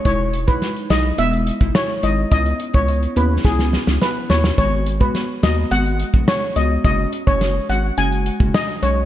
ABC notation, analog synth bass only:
X:1
M:4/4
L:1/16
Q:1/4=106
K:G#m
V:1 name="Analog synth bass" clef=bass
E,,,4 z2 B,,,2 E,,,3 G,,, z2 G,,,2 | C,,2 z C,,3 D,,2 C,,3 C,, z2 D,,2 | G,,,4 z2 D,,2 G,,,3 A,,, z2 C,,2 | F,,,2 z F,,,3 G,,,2 F,,,3 F,,, z2 B,,,2 |]